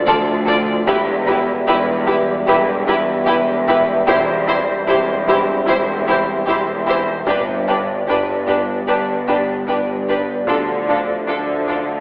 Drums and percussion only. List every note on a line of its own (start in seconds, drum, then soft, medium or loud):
0.07 taiko mid medium
0.48 taiko low medium
0.87 taiko loud
1.28 taiko low-mid soft
2.07 taiko medium
2.87 taiko low-mid soft
3.27 taiko medium
3.68 taiko low-mid soft
4.08 taiko loud
5.27 taiko medium
6.47 taiko medium
7.27 taiko medium
8.47 taiko medium
9.67 taiko medium
10.47 taiko medium
11.68 taiko medium